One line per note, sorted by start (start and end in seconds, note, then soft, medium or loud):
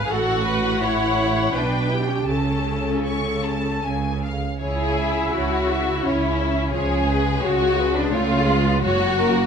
0.00 0.10 B4 medium
0.00 0.11 F5 soft
0.05 0.11 G#4 soft
0.10 1.51 A1 soft
0.10 1.51 A2 soft
0.10 0.81 F#4 medium
0.10 0.45 A4 soft
0.10 0.46 F#5 soft
0.45 0.81 B4 soft
0.45 1.53 F#5 soft
0.81 1.54 E4 medium
0.81 1.54 C#5 soft
1.54 2.28 B1 soft
1.54 2.28 B2 soft
1.54 1.91 D4 soft
1.54 1.91 B4 soft
1.54 2.30 G5 soft
1.90 2.00 E4 soft
1.90 2.30 G4 soft
2.00 2.10 D4 soft
2.09 2.19 C#4 soft
2.19 2.29 D4 soft
2.28 3.82 C#2 soft
2.28 3.81 C#3 soft
2.28 3.81 C#4 soft
2.28 4.23 A4 soft
2.28 2.97 A5 soft
3.06 3.43 C#6 soft
3.45 3.85 A5 soft
3.84 4.40 C#2 soft
3.84 4.39 C#3 soft
3.84 4.23 G#5 soft
4.23 4.60 F5 soft
4.60 5.26 C#2 soft
4.60 5.25 C#3 soft
4.60 6.01 E4 soft
4.60 5.30 G#4 soft
4.60 4.94 C#5 soft
4.97 5.34 E5 soft
5.33 5.97 C#2 soft
5.33 5.96 C#3 soft
5.33 6.05 F#4 soft
5.33 5.70 C#5 soft
5.71 6.06 E5 soft
6.04 6.67 C#2 soft
6.04 6.66 C#3 soft
6.04 6.74 C#4 soft
6.04 6.75 E4 medium
6.04 6.38 C#5 soft
6.41 6.75 E5 soft
6.73 7.36 C#2 soft
6.73 7.35 C#3 soft
6.73 7.08 F3 soft
6.73 7.42 G#4 medium
6.73 7.06 C#5 soft
7.08 8.11 G#3 soft
7.08 7.43 B4 soft
7.43 8.05 C#2 soft
7.43 8.05 C#3 soft
7.43 7.96 F#4 medium
7.43 7.78 C#5 soft
7.78 8.13 B4 soft
7.96 8.13 D4 medium
8.12 8.74 C#2 soft
8.12 8.74 C#3 soft
8.12 8.48 A3 medium
8.12 8.82 F4 medium
8.12 8.45 C#5 soft
8.47 8.83 G#3 soft
8.47 8.82 B4 soft
8.81 9.46 F#1 medium
8.81 9.45 F#2 medium
8.81 9.17 F#3 soft
8.81 9.46 F#4 medium
8.81 9.16 C#5 soft
9.19 9.46 A#3 soft
9.19 9.46 A#4 soft